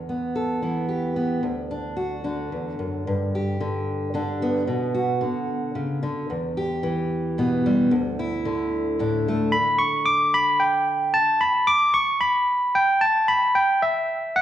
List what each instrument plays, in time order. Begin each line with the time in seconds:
Already playing: steel-string acoustic guitar E2
0.09 steel-string acoustic guitar B3
0.36 steel-string acoustic guitar A4
0.62 steel-string acoustic guitar E3 B3
0.89 steel-string acoustic guitar G4
1.16 steel-string acoustic guitar B3
1.43 steel-string acoustic guitar D2
1.71 steel-string acoustic guitar D4
1.97 steel-string acoustic guitar F#4
2.24 steel-string acoustic guitar D3 D4
2.52 steel-string acoustic guitar E2
2.79 steel-string acoustic guitar F#2
3.07 steel-string acoustic guitar G2
3.35 steel-string acoustic guitar G4
3.60 steel-string acoustic guitar D3
4.14 steel-string acoustic guitar D3 D4
4.42 steel-string acoustic guitar B3
4.67 steel-string acoustic guitar B2
4.94 steel-string acoustic guitar F#4
5.21 steel-string acoustic guitar D3
5.75 steel-string acoustic guitar C#3
6.03 steel-string acoustic guitar D3
6.30 steel-string acoustic guitar E2
6.57 steel-string acoustic guitar G4
6.83 steel-string acoustic guitar E3
7.38 steel-string acoustic guitar B2 B3
7.66 steel-string acoustic guitar G3
7.91 steel-string acoustic guitar D2
8.19 steel-string acoustic guitar E4
8.45 steel-string acoustic guitar D3
8.99 steel-string acoustic guitar A2 D4
9.28 steel-string acoustic guitar A3
9.52 tine electric piano B5
9.79 tine electric piano C#6
10.06 tine electric piano D6
10.34 tine electric piano B5
10.60 tine electric piano G5
11.14 tine electric piano A5
11.41 tine electric piano B5
11.67 tine electric piano D6
11.94 tine electric piano C#6
12.21 tine electric piano B5
12.75 tine electric piano G5
13.01 tine electric piano A5
13.28 tine electric piano B5
13.55 tine electric piano G5
13.82 tine electric piano E5
14.36 tine electric piano F#5